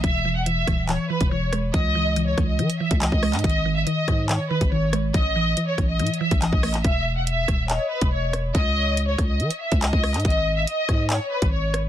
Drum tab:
HH |x-----------------------x-----------x-----------x-----------------x-----------------x-----------|x-----------------------x-----------x-----------x-----x-----------x-----x-----------o-----x--x--|x--x--------------------x-----------x-----------x-----------------x-----------------x-----------|x-----------------------x-----------x-----------x---x---x---------x-----x-----------o-----x-----|
CP |------------------------------------------------x-----------------------------------------------|------------------------------------------------------------------------x-----------------x-----|------------------------------------------------x-----------------------------------------------|------------------------------------------------------------------------x-----------------x-----|
SD |------------------------------------r-----------------------------------------------r-----------|------------------------------------r-----------------------------------------------r-----------|------------------------------------r-----------------------------------------------r-----------|------------------------------------r-----------------------------------------------r-----------|
BD |o-----------------------------------o-----------------------------o-----------------------------|o-----------------------------------o-----------------------------o-----------o-----------------|o-----------------------------------o-----------------------------o-----------------------------|o-----------------------------------o-----------------------------o-----------o-----------------|

HH |x-----------------------x-----------x-----------x-----------------x-----------------x-----------|x-----------------------x-----------x-----------x-----x-----------x-----x-----------o-----x--x--|x--x--------------------x-----------x-----------x-----------------x-----------------x-----------|
CP |------------------------------------------------x-----------------------------------------------|------------------------------------------------------------------------x-----------------x-----|------------------------------------------------x-----------------------------------------------|
SD |------------------------------------r-----------------------------------------------r-----------|------------------------------------r-----------------------------------------------r-----------|------------------------------------r-----------------------------------------------r-----------|
BD |o-----------------------------------o-----------------------------o-----------------------------|o-----------------------------------o-----------------------------o-----------o-----------------|o-----------------------------------o-----------------------------o-----------------------------|